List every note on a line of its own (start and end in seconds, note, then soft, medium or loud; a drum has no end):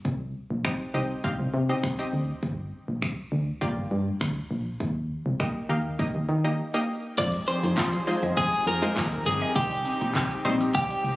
0.05 0.35 C2 loud
0.05 kick loud
0.50 0.60 A#1 medium
0.65 0.82 C4 medium
0.65 0.82 D#4 medium
0.65 0.82 G4 medium
0.65 0.82 D#5 medium
0.65 finger snap loud
0.65 kick loud
0.94 1.14 C2 medium
0.94 1.11 C4 medium
0.94 1.11 D#4 medium
0.94 1.11 G4 medium
0.94 1.12 D#5 medium
1.24 1.49 C4 medium
1.24 1.49 D#4 medium
1.24 1.49 G4 medium
1.24 1.49 F5 loud
1.24 kick loud
1.40 1.49 C2 loud
1.54 1.73 C3 loud
1.69 1.85 C4 medium
1.69 1.85 D#4 medium
1.69 1.85 G4 medium
1.69 1.85 D#5 medium
1.83 2.03 C2 medium
1.83 finger snap loud
1.83 kick loud
1.99 2.43 C4 loud
1.99 2.43 D#4 medium
1.99 2.43 G4 medium
1.99 2.43 D#5 loud
2.13 2.32 D2 medium
2.43 2.72 G1 loud
2.43 kick loud
2.88 2.97 A#1 medium
3.02 finger snap loud
3.02 kick loud
3.32 3.51 D2 medium
3.61 4.27 A#3 medium
3.61 4.27 F4 medium
3.61 4.27 G4 medium
3.61 4.27 D5 loud
3.61 kick loud
3.77 3.86 G1 medium
3.91 4.11 G2 loud
4.21 4.40 D2 medium
4.21 finger snap loud
4.21 kick loud
4.51 4.70 A#1 loud
4.80 5.10 D#2 loud
4.80 kick loud
5.26 5.35 C2 medium
5.40 5.57 A#3 medium
5.40 5.57 D#4 medium
5.40 5.57 G4 medium
5.40 5.57 D#5 medium
5.40 finger snap loud
5.40 kick loud
5.69 5.89 D#2 medium
5.69 5.87 A#3 medium
5.69 5.87 D#4 medium
5.69 5.87 G4 medium
5.69 5.87 F5 medium
5.99 6.24 A#3 medium
5.99 6.24 D#4 medium
5.99 6.24 G4 medium
5.99 6.24 D#5 loud
5.99 kick loud
6.15 6.24 D#2 loud
6.29 6.48 D#3 loud
6.44 6.60 A#3 medium
6.44 6.60 D#4 medium
6.44 6.60 G4 medium
6.44 6.60 D#5 medium
6.74 7.18 A#3 loud
6.74 7.17 D#4 medium
6.74 7.18 G4 medium
6.74 7.18 D#5 loud
7.18 7.37 F2 loud
7.18 9.53 F3 medium
7.18 7.32 F3 medium
7.18 7.68 G#3 medium
7.18 11.16 C4 medium
7.18 11.16 D#4 medium
7.18 7.68 D#4 medium
7.18 7.68 F4 medium
7.18 11.16 G4 medium
7.18 9.53 G#4 medium
7.18 7.68 C5 medium
7.18 7.26 D5 loud
7.18 kick loud
7.18 crash medium
7.18 shaker medium
7.34 7.46 G#3 medium
7.34 closed hi-hat medium
7.34 shaker medium
7.48 7.62 C4 medium
7.48 8.37 C5 loud
7.48 open hi-hat medium
7.48 shaker medium
7.63 7.73 F2 medium
7.63 7.76 D#4 loud
7.63 closed hi-hat medium
7.63 shaker medium
7.77 7.97 F3 loud
7.77 kick loud
7.77 snare medium
7.77 clap loud
7.77 shaker medium
7.93 8.06 G#4 medium
7.93 closed hi-hat medium
7.93 shaker medium
8.07 8.49 G#3 medium
8.07 8.49 D#4 medium
8.07 8.49 F4 medium
8.07 8.21 C5 loud
8.07 8.49 C5 medium
8.07 open hi-hat medium
8.07 shaker medium
8.23 8.32 F2 medium
8.23 8.35 D#5 medium
8.23 closed hi-hat medium
8.23 shaker medium
8.37 8.67 G#4 medium
8.37 kick loud
8.37 shaker medium
8.53 8.65 G#3 medium
8.53 closed hi-hat medium
8.53 shaker medium
8.67 8.86 F2 loud
8.67 9.26 A#4 medium
8.67 open hi-hat medium
8.67 shaker soft
8.82 9.22 G#3 medium
8.82 8.95 D#4 medium
8.82 9.23 D#4 medium
8.82 9.23 F4 medium
8.82 9.23 C5 medium
8.82 closed hi-hat medium
8.82 shaker medium
8.96 9.16 D#2 medium
8.96 9.10 F4 loud
8.96 kick loud
8.96 snare medium
8.96 clap loud
8.96 shaker medium
9.12 9.25 G#4 medium
9.12 closed hi-hat medium
9.12 shaker medium
9.26 9.45 G1 loud
9.26 9.55 G#4 medium
9.26 open hi-hat medium
9.26 shaker medium
9.42 9.54 D#5 loud
9.42 closed hi-hat medium
9.42 shaker medium
9.55 9.85 C2 loud
9.55 9.70 D#3 medium
9.55 10.05 G3 medium
9.55 10.05 C4 medium
9.55 10.06 D#4 medium
9.55 10.41 G4 medium
9.55 10.06 C5 medium
9.55 kick loud
9.55 shaker medium
9.71 9.84 G3 medium
9.71 closed hi-hat medium
9.71 shaker medium
9.85 9.99 C4 medium
9.85 open hi-hat medium
9.85 shaker medium
10.01 10.10 A#1 medium
10.01 10.14 D#4 medium
10.01 closed hi-hat medium
10.01 shaker medium
10.15 10.35 C2 medium
10.15 kick loud
10.15 snare medium
10.15 clap loud
10.15 shaker medium
10.31 10.43 G5 medium
10.31 closed hi-hat medium
10.31 shaker medium
10.45 10.64 A#1 medium
10.45 10.86 G3 loud
10.45 10.86 C4 medium
10.45 10.86 D#4 medium
10.45 10.86 C5 loud
10.45 10.59 C6 loud
10.45 open hi-hat medium
10.45 shaker medium
10.61 10.73 D#6 medium
10.61 closed hi-hat medium
10.61 shaker medium
10.75 10.94 C2 loud
10.75 11.16 G4 medium
10.75 kick loud
10.75 shaker medium
10.90 11.03 G3 medium
10.90 closed hi-hat medium
10.90 shaker medium
11.04 11.16 C2 medium
11.04 open hi-hat medium
11.04 shaker soft